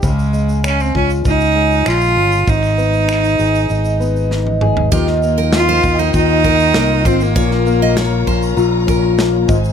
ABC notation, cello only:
X:1
M:4/4
L:1/16
Q:1/4=98
K:Ebmix
V:1 name="Cello"
A,4 D C D2 E4 F4 | E12 z4 | z4 F3 E E6 C B,- | B,6- B, z8 z |]